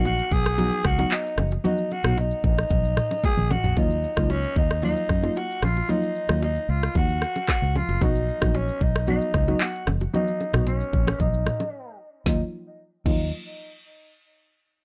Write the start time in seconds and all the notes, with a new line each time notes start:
Already playing: A#1
0.05 F#4, high bongo, shaker
0.18 shaker
0.31 B1 G#4, kick
0.45 cross-stick, shaker
0.57 F#3 B3 D#4 F#4, low conga, shaker
0.72 shaker
0.85 C#2 F#4, kick, cross-stick, shaker
0.98 F#3 B3 D#4 F#4, low bongo, shaker
1.11 D#4, clap, high bongo, shaker
1.26 shaker
1.38 F#1, cross-stick, low bongo, low conga
1.51 high bongo, shaker
1.64 F#3 B3 D#4 F#4, low conga, shaker
1.78 shaker
1.91 F#4, low bongo, shaker
2.03 B1 F#3 B3 D#4 F#4, cross-stick, mid tom, shaker
2.17 D#4, high bongo, shaker
2.31 shaker
2.44 A#1 D#4, kick
2.58 cross-stick, shaker
2.70 B1, kick, low conga, shaker
2.84 shaker
2.97 cross-stick, mid tom, shaker
3.11 low bongo, shaker
3.24 G#4, kick, high tom, high bongo, shaker
3.37 A#1, mid tom, shaker
3.50 F#4, mid tom, low bongo, low conga, shaker
3.64 A#1, floor tom, high bongo, shaker
3.76 D#2 F#3 A#3 D#4 F4, kick, low conga, shaker
3.90 shaker
4.03 shaker
4.16 C#2 F#3 A#3 D#4 F4, kick, cross-stick, shaker
4.30 C#4, high bongo, shaker
4.43 shaker
4.56 D#2 D#4, kick
4.70 cross-stick, shaker
4.82 F#3 A#3 D#4 F4, low conga, shaker
4.96 shaker
5.09 F#2, kick, cross-stick, shaker
5.23 F#3 A#3 D#4 F4, low bongo, shaker
5.36 F#4, high bongo, shaker
5.51 shaker
5.62 A#1 F4, cross-stick, low bongo, low conga
5.76 high bongo, shaker
5.88 F#3 A#3 D#4 F4, low conga, shaker
6.02 shaker
6.16 shaker
6.28 D#2 F#3 A#3 D#4 F4, cross-stick, shaker
6.42 D#4, high bongo, shaker
6.55 shaker
6.69 C#2 F4
6.82 cross-stick, shaker
6.94 D#2 F#4, kick, low conga, shaker
7.09 shaker
7.22 cross-stick, shaker
7.35 low bongo, shaker
7.48 F#4, kick, cross-stick, clap, high bongo, shaker
7.62 C#2, shaker
7.76 F4, low bongo, low conga
7.88 F#1, high bongo, shaker
8.01 B1 F#3 B3 D#4 F#4, kick, low conga, shaker
8.15 shaker
8.28 shaker
8.41 A#1 F#3 B3 D#4 F#4, kick, cross-stick, shaker
8.55 C#4, high bongo, shaker
8.68 shaker
8.81 B1 D#4, kick
8.95 cross-stick, shaker
9.07 F#3 B3 D#4 F#4, low conga, shaker
9.21 shaker
9.34 C#2, kick, cross-stick, shaker
9.48 F#3 B3 D#4 F#4, low bongo, shaker
9.61 F#4, clap, high bongo, shaker
9.75 shaker
9.87 F#1, cross-stick, low bongo, low conga
10.00 high bongo, shaker
10.13 F#3 B3 D#4 F#4, low conga, shaker
10.27 shaker
10.40 low bongo, shaker
10.53 B1 F#3 B3 D#4 F#4, cross-stick, mid tom, shaker
10.67 C#4, high bongo, shaker
10.80 shaker
10.93 A#1, kick
11.07 cross-stick, low bongo, shaker
11.19 B1 D#4, kick, low conga, shaker
11.34 shaker
11.46 cross-stick, mid tom, high bongo, shaker
11.60 low bongo, shaker
12.26 D#2 F#3 A#3 D#4 F4, kick, snare, low conga
13.05 D#2 F#3 A#3 D#4 F4, kick, crash, low conga